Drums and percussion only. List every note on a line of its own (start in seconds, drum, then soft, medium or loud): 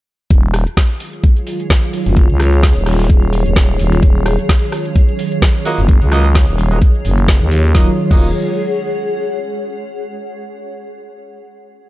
0.30 kick loud
0.30 closed hi-hat medium
0.30 shaker soft
0.54 cross-stick medium
0.54 closed hi-hat medium
0.54 open hi-hat loud
0.54 shaker medium
0.67 closed hi-hat medium
0.67 shaker soft
0.77 kick loud
0.77 snare loud
0.77 closed hi-hat medium
0.77 open hi-hat medium
0.77 shaker soft
0.90 snare soft
0.90 shaker soft
1.00 closed hi-hat medium
1.00 open hi-hat loud
1.00 shaker medium
1.13 closed hi-hat medium
1.13 shaker soft
1.23 kick loud
1.23 closed hi-hat medium
1.23 shaker soft
1.37 closed hi-hat soft
1.37 shaker soft
1.47 closed hi-hat medium
1.47 open hi-hat loud
1.47 shaker medium
1.60 closed hi-hat medium
1.60 shaker soft
1.70 kick loud
1.70 snare loud
1.70 closed hi-hat medium
1.70 shaker soft
1.83 closed hi-hat soft
1.93 closed hi-hat medium
1.93 open hi-hat loud
1.93 shaker medium
2.06 snare soft
2.06 closed hi-hat medium
2.06 shaker soft
2.17 kick loud
2.17 closed hi-hat medium
2.17 shaker soft
2.30 closed hi-hat soft
2.40 cross-stick medium
2.40 snare soft
2.40 closed hi-hat medium
2.40 open hi-hat loud
2.40 shaker medium
2.53 closed hi-hat medium
2.53 shaker soft
2.63 kick loud
2.63 snare loud
2.63 closed hi-hat medium
2.63 shaker soft
2.76 closed hi-hat soft
2.76 shaker soft
2.86 cross-stick medium
2.86 snare medium
2.86 open hi-hat loud
2.86 open hi-hat medium
2.86 shaker medium
2.93 snare medium
2.93 open hi-hat medium
2.99 snare medium
2.99 closed hi-hat soft
2.99 open hi-hat medium
2.99 shaker soft
3.05 snare medium
3.05 open hi-hat medium
3.10 kick loud
3.10 closed hi-hat medium
3.10 shaker soft
3.23 shaker soft
3.33 closed hi-hat medium
3.33 open hi-hat loud
3.33 shaker medium
3.46 closed hi-hat medium
3.46 shaker soft
3.56 kick loud
3.56 snare loud
3.56 closed hi-hat medium
3.56 shaker soft
3.79 closed hi-hat medium
3.79 open hi-hat loud
3.79 shaker medium
3.92 snare soft
3.92 closed hi-hat medium
3.92 shaker soft
4.03 kick loud
4.03 closed hi-hat medium
4.03 shaker soft
4.26 cross-stick medium
4.26 closed hi-hat medium
4.26 open hi-hat loud
4.26 shaker medium
4.39 closed hi-hat medium
4.39 shaker soft
4.49 kick loud
4.49 snare loud
4.49 closed hi-hat medium
4.49 open hi-hat medium
4.49 shaker soft
4.62 snare soft
4.62 shaker soft
4.72 cross-stick medium
4.72 closed hi-hat medium
4.72 open hi-hat loud
4.72 shaker medium
4.85 closed hi-hat soft
4.85 shaker soft
4.96 kick loud
4.96 closed hi-hat medium
4.96 shaker soft
5.09 closed hi-hat soft
5.09 shaker soft
5.19 closed hi-hat medium
5.19 open hi-hat loud
5.19 shaker medium
5.32 closed hi-hat medium
5.32 shaker soft
5.42 kick loud
5.42 snare loud
5.42 closed hi-hat medium
5.42 shaker soft
5.55 closed hi-hat soft
5.65 closed hi-hat medium
5.65 open hi-hat loud
5.65 shaker medium
5.78 snare soft
5.78 closed hi-hat medium
5.78 shaker soft
5.89 kick loud
5.89 closed hi-hat medium
5.89 shaker soft
6.02 closed hi-hat soft
6.12 cross-stick medium
6.12 snare soft
6.12 closed hi-hat medium
6.12 open hi-hat loud
6.12 shaker medium
6.25 closed hi-hat medium
6.25 shaker soft
6.35 kick loud
6.35 snare loud
6.35 closed hi-hat medium
6.35 shaker soft
6.48 closed hi-hat soft
6.48 shaker soft
6.58 closed hi-hat medium
6.58 open hi-hat loud
6.58 shaker medium
6.71 closed hi-hat medium
6.71 shaker soft
6.82 kick loud
6.82 closed hi-hat medium
6.82 shaker soft
6.95 shaker soft
7.05 closed hi-hat medium
7.05 open hi-hat loud
7.05 shaker medium
7.18 closed hi-hat medium
7.18 shaker soft
7.28 kick loud
7.28 snare loud
7.28 closed hi-hat medium
7.28 shaker soft
7.41 shaker soft
7.51 closed hi-hat medium
7.51 open hi-hat loud
7.51 shaker medium
7.64 snare soft
7.64 closed hi-hat medium
7.64 shaker soft
7.75 kick loud
7.75 snare medium
8.11 kick loud
8.11 crash medium